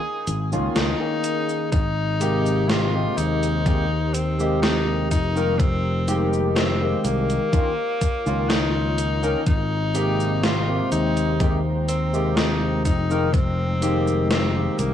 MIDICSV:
0, 0, Header, 1, 6, 480
1, 0, Start_track
1, 0, Key_signature, -4, "major"
1, 0, Tempo, 967742
1, 856, Time_signature, 4, 2, 24, 8
1, 7410, End_track
2, 0, Start_track
2, 0, Title_t, "Ambient pad"
2, 0, Program_c, 0, 92
2, 856, Note_on_c, 0, 67, 82
2, 857, Note_on_c, 0, 70, 73
2, 857, Note_on_c, 0, 72, 74
2, 2520, Note_off_c, 0, 72, 0
2, 2535, Note_on_c, 0, 75, 72
2, 3716, Note_off_c, 0, 67, 0
2, 3717, Note_off_c, 0, 70, 0
2, 3735, Note_on_c, 0, 82, 92
2, 3736, Note_on_c, 0, 73, 76
2, 3737, Note_on_c, 0, 65, 85
2, 4675, Note_off_c, 0, 75, 0
2, 4686, Note_off_c, 0, 73, 0
2, 4687, Note_off_c, 0, 65, 0
2, 4698, Note_on_c, 0, 56, 84
2, 4698, Note_on_c, 0, 72, 77
2, 4699, Note_on_c, 0, 79, 76
2, 6360, Note_off_c, 0, 72, 0
2, 6376, Note_on_c, 0, 75, 76
2, 7410, Note_off_c, 0, 56, 0
2, 7410, Note_off_c, 0, 75, 0
2, 7410, Note_off_c, 0, 79, 0
2, 7410, Note_off_c, 0, 82, 0
2, 7410, End_track
3, 0, Start_track
3, 0, Title_t, "Tenor saxophone"
3, 0, Program_c, 1, 66
3, 0, Note_on_c, 1, 68, 127
3, 244, Note_off_c, 1, 68, 0
3, 373, Note_on_c, 1, 63, 113
3, 834, Note_off_c, 1, 63, 0
3, 851, Note_on_c, 1, 63, 115
3, 1331, Note_on_c, 1, 65, 109
3, 1339, Note_off_c, 1, 63, 0
3, 1572, Note_on_c, 1, 63, 117
3, 1579, Note_off_c, 1, 65, 0
3, 2052, Note_on_c, 1, 60, 100
3, 2060, Note_off_c, 1, 63, 0
3, 2288, Note_off_c, 1, 60, 0
3, 2291, Note_on_c, 1, 63, 110
3, 2517, Note_off_c, 1, 63, 0
3, 2533, Note_on_c, 1, 63, 103
3, 2772, Note_on_c, 1, 60, 113
3, 2779, Note_off_c, 1, 63, 0
3, 3124, Note_off_c, 1, 60, 0
3, 3249, Note_on_c, 1, 60, 103
3, 3492, Note_on_c, 1, 58, 114
3, 3499, Note_off_c, 1, 60, 0
3, 4212, Note_on_c, 1, 63, 113
3, 4220, Note_off_c, 1, 58, 0
3, 4692, Note_off_c, 1, 63, 0
3, 4695, Note_on_c, 1, 63, 117
3, 5174, Note_on_c, 1, 65, 108
3, 5182, Note_off_c, 1, 63, 0
3, 5412, Note_off_c, 1, 65, 0
3, 5415, Note_on_c, 1, 63, 114
3, 5746, Note_off_c, 1, 63, 0
3, 5895, Note_on_c, 1, 60, 99
3, 6133, Note_on_c, 1, 63, 105
3, 6140, Note_off_c, 1, 60, 0
3, 6370, Note_off_c, 1, 63, 0
3, 6373, Note_on_c, 1, 63, 100
3, 6612, Note_on_c, 1, 60, 110
3, 6620, Note_off_c, 1, 63, 0
3, 7090, Note_off_c, 1, 60, 0
3, 7093, Note_on_c, 1, 60, 100
3, 7331, Note_on_c, 1, 58, 111
3, 7338, Note_off_c, 1, 60, 0
3, 7410, Note_off_c, 1, 58, 0
3, 7410, End_track
4, 0, Start_track
4, 0, Title_t, "Tine electric piano"
4, 0, Program_c, 2, 4
4, 257, Note_on_c, 2, 51, 87
4, 260, Note_on_c, 2, 58, 78
4, 262, Note_on_c, 2, 61, 79
4, 265, Note_on_c, 2, 65, 93
4, 469, Note_off_c, 2, 51, 0
4, 470, Note_off_c, 2, 58, 0
4, 471, Note_off_c, 2, 61, 0
4, 472, Note_off_c, 2, 65, 0
4, 496, Note_on_c, 2, 51, 74
4, 498, Note_on_c, 2, 58, 67
4, 502, Note_on_c, 2, 61, 65
4, 504, Note_on_c, 2, 68, 81
4, 840, Note_off_c, 2, 51, 0
4, 841, Note_off_c, 2, 58, 0
4, 843, Note_off_c, 2, 61, 0
4, 844, Note_off_c, 2, 68, 0
4, 1091, Note_on_c, 2, 48, 91
4, 1094, Note_on_c, 2, 56, 83
4, 1096, Note_on_c, 2, 58, 84
4, 1099, Note_on_c, 2, 67, 99
4, 1428, Note_off_c, 2, 48, 0
4, 1429, Note_off_c, 2, 56, 0
4, 1431, Note_off_c, 2, 58, 0
4, 1432, Note_off_c, 2, 67, 0
4, 1457, Note_on_c, 2, 48, 76
4, 1459, Note_on_c, 2, 56, 69
4, 1462, Note_on_c, 2, 58, 67
4, 1465, Note_on_c, 2, 67, 83
4, 1786, Note_off_c, 2, 48, 0
4, 1787, Note_off_c, 2, 56, 0
4, 1789, Note_off_c, 2, 58, 0
4, 1790, Note_off_c, 2, 67, 0
4, 1813, Note_on_c, 2, 48, 79
4, 1815, Note_on_c, 2, 56, 73
4, 1817, Note_on_c, 2, 58, 70
4, 1820, Note_on_c, 2, 67, 87
4, 1906, Note_off_c, 2, 48, 0
4, 1907, Note_off_c, 2, 56, 0
4, 1908, Note_off_c, 2, 58, 0
4, 1909, Note_off_c, 2, 67, 0
4, 2177, Note_on_c, 2, 48, 84
4, 2179, Note_on_c, 2, 56, 76
4, 2182, Note_on_c, 2, 58, 76
4, 2185, Note_on_c, 2, 67, 92
4, 2520, Note_off_c, 2, 48, 0
4, 2521, Note_off_c, 2, 56, 0
4, 2523, Note_off_c, 2, 58, 0
4, 2524, Note_off_c, 2, 67, 0
4, 2657, Note_on_c, 2, 51, 99
4, 2659, Note_on_c, 2, 56, 87
4, 2662, Note_on_c, 2, 58, 90
4, 2664, Note_on_c, 2, 70, 109
4, 2743, Note_off_c, 2, 51, 0
4, 2745, Note_off_c, 2, 56, 0
4, 2746, Note_off_c, 2, 58, 0
4, 2747, Note_off_c, 2, 70, 0
4, 3012, Note_on_c, 2, 51, 94
4, 3014, Note_on_c, 2, 56, 86
4, 3016, Note_on_c, 2, 58, 86
4, 3019, Note_on_c, 2, 67, 100
4, 3349, Note_off_c, 2, 51, 0
4, 3350, Note_off_c, 2, 56, 0
4, 3351, Note_off_c, 2, 58, 0
4, 3352, Note_off_c, 2, 67, 0
4, 3376, Note_on_c, 2, 51, 73
4, 3379, Note_on_c, 2, 56, 70
4, 3381, Note_on_c, 2, 58, 69
4, 3384, Note_on_c, 2, 67, 82
4, 3706, Note_off_c, 2, 51, 0
4, 3708, Note_off_c, 2, 56, 0
4, 3708, Note_off_c, 2, 58, 0
4, 3710, Note_off_c, 2, 67, 0
4, 3731, Note_on_c, 2, 51, 79
4, 3733, Note_on_c, 2, 58, 73
4, 3736, Note_on_c, 2, 61, 73
4, 3739, Note_on_c, 2, 65, 91
4, 3825, Note_off_c, 2, 51, 0
4, 3826, Note_off_c, 2, 58, 0
4, 3828, Note_off_c, 2, 61, 0
4, 3829, Note_off_c, 2, 65, 0
4, 4096, Note_on_c, 2, 51, 86
4, 4098, Note_on_c, 2, 58, 80
4, 4101, Note_on_c, 2, 61, 78
4, 4103, Note_on_c, 2, 65, 96
4, 4548, Note_off_c, 2, 51, 0
4, 4549, Note_off_c, 2, 58, 0
4, 4551, Note_off_c, 2, 61, 0
4, 4552, Note_off_c, 2, 65, 0
4, 4575, Note_on_c, 2, 51, 96
4, 4578, Note_on_c, 2, 58, 89
4, 4581, Note_on_c, 2, 61, 91
4, 4583, Note_on_c, 2, 70, 108
4, 4663, Note_off_c, 2, 51, 0
4, 4664, Note_off_c, 2, 58, 0
4, 4665, Note_off_c, 2, 61, 0
4, 4667, Note_off_c, 2, 70, 0
4, 4932, Note_on_c, 2, 48, 92
4, 4934, Note_on_c, 2, 56, 86
4, 4937, Note_on_c, 2, 58, 82
4, 4938, Note_on_c, 2, 67, 98
4, 5268, Note_off_c, 2, 48, 0
4, 5270, Note_off_c, 2, 56, 0
4, 5271, Note_off_c, 2, 58, 0
4, 5272, Note_off_c, 2, 67, 0
4, 5296, Note_on_c, 2, 48, 75
4, 5299, Note_on_c, 2, 56, 70
4, 5302, Note_on_c, 2, 58, 69
4, 5304, Note_on_c, 2, 67, 85
4, 5626, Note_off_c, 2, 48, 0
4, 5627, Note_off_c, 2, 56, 0
4, 5629, Note_off_c, 2, 58, 0
4, 5630, Note_off_c, 2, 67, 0
4, 5653, Note_on_c, 2, 48, 81
4, 5655, Note_on_c, 2, 56, 73
4, 5657, Note_on_c, 2, 58, 75
4, 5660, Note_on_c, 2, 67, 87
4, 5746, Note_off_c, 2, 48, 0
4, 5747, Note_off_c, 2, 56, 0
4, 5748, Note_off_c, 2, 58, 0
4, 5749, Note_off_c, 2, 67, 0
4, 6017, Note_on_c, 2, 48, 86
4, 6020, Note_on_c, 2, 56, 78
4, 6022, Note_on_c, 2, 58, 76
4, 6025, Note_on_c, 2, 67, 97
4, 6360, Note_off_c, 2, 48, 0
4, 6362, Note_off_c, 2, 56, 0
4, 6362, Note_off_c, 2, 58, 0
4, 6364, Note_off_c, 2, 67, 0
4, 6498, Note_on_c, 2, 51, 99
4, 6500, Note_on_c, 2, 56, 88
4, 6503, Note_on_c, 2, 58, 86
4, 6505, Note_on_c, 2, 70, 108
4, 6584, Note_off_c, 2, 51, 0
4, 6585, Note_off_c, 2, 56, 0
4, 6586, Note_off_c, 2, 58, 0
4, 6588, Note_off_c, 2, 70, 0
4, 6851, Note_on_c, 2, 51, 94
4, 6854, Note_on_c, 2, 56, 85
4, 6856, Note_on_c, 2, 58, 86
4, 6859, Note_on_c, 2, 67, 102
4, 7188, Note_off_c, 2, 51, 0
4, 7189, Note_off_c, 2, 56, 0
4, 7191, Note_off_c, 2, 58, 0
4, 7192, Note_off_c, 2, 67, 0
4, 7216, Note_on_c, 2, 51, 73
4, 7219, Note_on_c, 2, 56, 67
4, 7222, Note_on_c, 2, 58, 69
4, 7224, Note_on_c, 2, 67, 86
4, 7410, Note_off_c, 2, 51, 0
4, 7410, Note_off_c, 2, 56, 0
4, 7410, Note_off_c, 2, 58, 0
4, 7410, Note_off_c, 2, 67, 0
4, 7410, End_track
5, 0, Start_track
5, 0, Title_t, "Fingered electric bass"
5, 0, Program_c, 3, 33
5, 135, Note_on_c, 3, 32, 94
5, 260, Note_on_c, 3, 37, 79
5, 267, Note_off_c, 3, 32, 0
5, 337, Note_off_c, 3, 37, 0
5, 375, Note_on_c, 3, 37, 96
5, 458, Note_off_c, 3, 37, 0
5, 855, Note_on_c, 3, 32, 102
5, 1513, Note_off_c, 3, 32, 0
5, 1574, Note_on_c, 3, 39, 79
5, 2535, Note_on_c, 3, 29, 80
5, 2542, Note_off_c, 3, 39, 0
5, 3433, Note_off_c, 3, 29, 0
5, 3494, Note_on_c, 3, 36, 81
5, 3657, Note_off_c, 3, 36, 0
5, 4100, Note_on_c, 3, 37, 86
5, 4633, Note_off_c, 3, 37, 0
5, 4695, Note_on_c, 3, 32, 101
5, 5353, Note_off_c, 3, 32, 0
5, 5414, Note_on_c, 3, 39, 81
5, 6375, Note_on_c, 3, 29, 83
5, 6383, Note_off_c, 3, 39, 0
5, 7273, Note_off_c, 3, 29, 0
5, 7336, Note_on_c, 3, 36, 83
5, 7410, Note_off_c, 3, 36, 0
5, 7410, End_track
6, 0, Start_track
6, 0, Title_t, "Drums"
6, 136, Note_on_c, 9, 42, 68
6, 136, Note_on_c, 9, 69, 67
6, 186, Note_off_c, 9, 42, 0
6, 186, Note_off_c, 9, 69, 0
6, 261, Note_on_c, 9, 69, 39
6, 311, Note_off_c, 9, 69, 0
6, 377, Note_on_c, 9, 38, 116
6, 377, Note_on_c, 9, 42, 80
6, 377, Note_on_c, 9, 69, 28
6, 426, Note_off_c, 9, 38, 0
6, 426, Note_off_c, 9, 42, 0
6, 426, Note_off_c, 9, 69, 0
6, 616, Note_on_c, 9, 42, 66
6, 616, Note_on_c, 9, 69, 66
6, 665, Note_off_c, 9, 42, 0
6, 665, Note_off_c, 9, 69, 0
6, 740, Note_on_c, 9, 69, 40
6, 789, Note_off_c, 9, 69, 0
6, 855, Note_on_c, 9, 36, 120
6, 856, Note_on_c, 9, 42, 83
6, 856, Note_on_c, 9, 69, 29
6, 905, Note_off_c, 9, 36, 0
6, 905, Note_off_c, 9, 42, 0
6, 905, Note_off_c, 9, 69, 0
6, 1096, Note_on_c, 9, 42, 69
6, 1096, Note_on_c, 9, 69, 66
6, 1145, Note_off_c, 9, 42, 0
6, 1145, Note_off_c, 9, 69, 0
6, 1221, Note_on_c, 9, 69, 38
6, 1270, Note_off_c, 9, 69, 0
6, 1336, Note_on_c, 9, 38, 122
6, 1336, Note_on_c, 9, 42, 82
6, 1336, Note_on_c, 9, 69, 29
6, 1386, Note_off_c, 9, 38, 0
6, 1386, Note_off_c, 9, 42, 0
6, 1386, Note_off_c, 9, 69, 0
6, 1577, Note_on_c, 9, 42, 70
6, 1577, Note_on_c, 9, 69, 69
6, 1626, Note_off_c, 9, 42, 0
6, 1626, Note_off_c, 9, 69, 0
6, 1701, Note_on_c, 9, 42, 37
6, 1701, Note_on_c, 9, 69, 37
6, 1751, Note_off_c, 9, 42, 0
6, 1751, Note_off_c, 9, 69, 0
6, 1815, Note_on_c, 9, 36, 125
6, 1817, Note_on_c, 9, 42, 85
6, 1817, Note_on_c, 9, 69, 29
6, 1865, Note_off_c, 9, 36, 0
6, 1866, Note_off_c, 9, 42, 0
6, 1866, Note_off_c, 9, 69, 0
6, 2056, Note_on_c, 9, 42, 68
6, 2056, Note_on_c, 9, 69, 69
6, 2106, Note_off_c, 9, 42, 0
6, 2106, Note_off_c, 9, 69, 0
6, 2181, Note_on_c, 9, 69, 39
6, 2231, Note_off_c, 9, 69, 0
6, 2296, Note_on_c, 9, 38, 115
6, 2296, Note_on_c, 9, 42, 81
6, 2296, Note_on_c, 9, 69, 28
6, 2346, Note_off_c, 9, 38, 0
6, 2346, Note_off_c, 9, 42, 0
6, 2346, Note_off_c, 9, 69, 0
6, 2535, Note_on_c, 9, 36, 61
6, 2536, Note_on_c, 9, 42, 69
6, 2536, Note_on_c, 9, 69, 67
6, 2585, Note_off_c, 9, 36, 0
6, 2585, Note_off_c, 9, 42, 0
6, 2585, Note_off_c, 9, 69, 0
6, 2661, Note_on_c, 9, 69, 39
6, 2710, Note_off_c, 9, 69, 0
6, 2775, Note_on_c, 9, 36, 124
6, 2776, Note_on_c, 9, 42, 85
6, 2776, Note_on_c, 9, 69, 29
6, 2825, Note_off_c, 9, 36, 0
6, 2826, Note_off_c, 9, 42, 0
6, 2826, Note_off_c, 9, 69, 0
6, 3016, Note_on_c, 9, 42, 70
6, 3016, Note_on_c, 9, 69, 68
6, 3065, Note_off_c, 9, 42, 0
6, 3065, Note_off_c, 9, 69, 0
6, 3140, Note_on_c, 9, 69, 37
6, 3190, Note_off_c, 9, 69, 0
6, 3255, Note_on_c, 9, 38, 124
6, 3255, Note_on_c, 9, 42, 83
6, 3255, Note_on_c, 9, 69, 29
6, 3305, Note_off_c, 9, 38, 0
6, 3305, Note_off_c, 9, 42, 0
6, 3305, Note_off_c, 9, 69, 0
6, 3495, Note_on_c, 9, 42, 69
6, 3495, Note_on_c, 9, 69, 69
6, 3545, Note_off_c, 9, 42, 0
6, 3545, Note_off_c, 9, 69, 0
6, 3620, Note_on_c, 9, 42, 38
6, 3620, Note_on_c, 9, 69, 36
6, 3669, Note_off_c, 9, 42, 0
6, 3669, Note_off_c, 9, 69, 0
6, 3735, Note_on_c, 9, 36, 124
6, 3736, Note_on_c, 9, 42, 88
6, 3736, Note_on_c, 9, 69, 29
6, 3785, Note_off_c, 9, 36, 0
6, 3785, Note_off_c, 9, 42, 0
6, 3785, Note_off_c, 9, 69, 0
6, 3975, Note_on_c, 9, 36, 66
6, 3975, Note_on_c, 9, 42, 69
6, 3975, Note_on_c, 9, 69, 63
6, 4025, Note_off_c, 9, 36, 0
6, 4025, Note_off_c, 9, 42, 0
6, 4025, Note_off_c, 9, 69, 0
6, 4100, Note_on_c, 9, 69, 37
6, 4150, Note_off_c, 9, 69, 0
6, 4215, Note_on_c, 9, 38, 123
6, 4215, Note_on_c, 9, 42, 82
6, 4215, Note_on_c, 9, 69, 28
6, 4265, Note_off_c, 9, 38, 0
6, 4265, Note_off_c, 9, 42, 0
6, 4265, Note_off_c, 9, 69, 0
6, 4456, Note_on_c, 9, 42, 70
6, 4456, Note_on_c, 9, 69, 64
6, 4505, Note_off_c, 9, 42, 0
6, 4505, Note_off_c, 9, 69, 0
6, 4580, Note_on_c, 9, 69, 38
6, 4630, Note_off_c, 9, 69, 0
6, 4695, Note_on_c, 9, 36, 123
6, 4695, Note_on_c, 9, 42, 81
6, 4695, Note_on_c, 9, 69, 28
6, 4745, Note_off_c, 9, 36, 0
6, 4745, Note_off_c, 9, 42, 0
6, 4745, Note_off_c, 9, 69, 0
6, 4935, Note_on_c, 9, 42, 68
6, 4935, Note_on_c, 9, 69, 62
6, 4985, Note_off_c, 9, 42, 0
6, 4985, Note_off_c, 9, 69, 0
6, 5060, Note_on_c, 9, 69, 36
6, 5110, Note_off_c, 9, 69, 0
6, 5176, Note_on_c, 9, 38, 125
6, 5176, Note_on_c, 9, 42, 82
6, 5176, Note_on_c, 9, 69, 28
6, 5226, Note_off_c, 9, 38, 0
6, 5226, Note_off_c, 9, 42, 0
6, 5226, Note_off_c, 9, 69, 0
6, 5416, Note_on_c, 9, 42, 69
6, 5416, Note_on_c, 9, 69, 64
6, 5466, Note_off_c, 9, 42, 0
6, 5466, Note_off_c, 9, 69, 0
6, 5540, Note_on_c, 9, 42, 36
6, 5540, Note_on_c, 9, 69, 35
6, 5589, Note_off_c, 9, 42, 0
6, 5589, Note_off_c, 9, 69, 0
6, 5655, Note_on_c, 9, 36, 127
6, 5656, Note_on_c, 9, 42, 85
6, 5656, Note_on_c, 9, 69, 28
6, 5705, Note_off_c, 9, 36, 0
6, 5705, Note_off_c, 9, 42, 0
6, 5705, Note_off_c, 9, 69, 0
6, 5896, Note_on_c, 9, 42, 68
6, 5896, Note_on_c, 9, 69, 62
6, 5945, Note_off_c, 9, 42, 0
6, 5945, Note_off_c, 9, 69, 0
6, 6021, Note_on_c, 9, 69, 36
6, 6070, Note_off_c, 9, 69, 0
6, 6136, Note_on_c, 9, 38, 122
6, 6136, Note_on_c, 9, 42, 81
6, 6136, Note_on_c, 9, 69, 26
6, 6185, Note_off_c, 9, 38, 0
6, 6185, Note_off_c, 9, 42, 0
6, 6185, Note_off_c, 9, 69, 0
6, 6375, Note_on_c, 9, 36, 67
6, 6376, Note_on_c, 9, 42, 68
6, 6376, Note_on_c, 9, 69, 64
6, 6425, Note_off_c, 9, 36, 0
6, 6425, Note_off_c, 9, 42, 0
6, 6425, Note_off_c, 9, 69, 0
6, 6501, Note_on_c, 9, 69, 37
6, 6550, Note_off_c, 9, 69, 0
6, 6615, Note_on_c, 9, 36, 126
6, 6616, Note_on_c, 9, 42, 78
6, 6616, Note_on_c, 9, 69, 27
6, 6665, Note_off_c, 9, 36, 0
6, 6666, Note_off_c, 9, 42, 0
6, 6666, Note_off_c, 9, 69, 0
6, 6856, Note_on_c, 9, 42, 66
6, 6856, Note_on_c, 9, 69, 61
6, 6905, Note_off_c, 9, 42, 0
6, 6905, Note_off_c, 9, 69, 0
6, 6980, Note_on_c, 9, 69, 36
6, 7030, Note_off_c, 9, 69, 0
6, 7095, Note_on_c, 9, 38, 122
6, 7095, Note_on_c, 9, 42, 80
6, 7095, Note_on_c, 9, 69, 27
6, 7145, Note_off_c, 9, 38, 0
6, 7145, Note_off_c, 9, 42, 0
6, 7145, Note_off_c, 9, 69, 0
6, 7336, Note_on_c, 9, 42, 68
6, 7336, Note_on_c, 9, 69, 63
6, 7385, Note_off_c, 9, 42, 0
6, 7385, Note_off_c, 9, 69, 0
6, 7410, End_track
0, 0, End_of_file